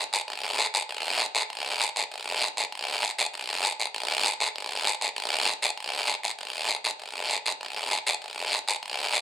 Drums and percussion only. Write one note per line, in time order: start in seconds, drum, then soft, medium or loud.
0.13 short guiro medium
0.28 long guiro medium
0.59 short guiro medium
0.74 short guiro medium
0.89 long guiro medium
1.20 short guiro medium
1.35 short guiro medium
1.50 long guiro medium
1.81 short guiro medium
1.96 short guiro medium
2.12 long guiro medium
2.42 short guiro medium
2.57 short guiro medium
2.72 long guiro medium
3.03 short guiro medium
3.18 short guiro medium
3.34 long guiro medium
3.64 short guiro medium
3.80 short guiro medium
3.94 long guiro medium
4.25 short guiro medium
4.40 short guiro medium
4.56 long guiro medium
4.86 short guiro medium
5.01 short guiro medium
5.16 long guiro medium
5.47 short guiro medium
5.62 short guiro medium
5.77 long guiro medium
6.08 short guiro medium
6.23 short guiro medium
6.39 long guiro medium
6.69 short guiro medium
6.84 short guiro medium
7.00 long guiro medium
7.30 short guiro medium
7.46 short guiro medium
7.61 long guiro medium
7.91 short guiro medium
8.07 short guiro medium
8.22 long guiro medium
8.52 short guiro medium
8.68 short guiro medium
8.83 long guiro medium
9.14 short guiro medium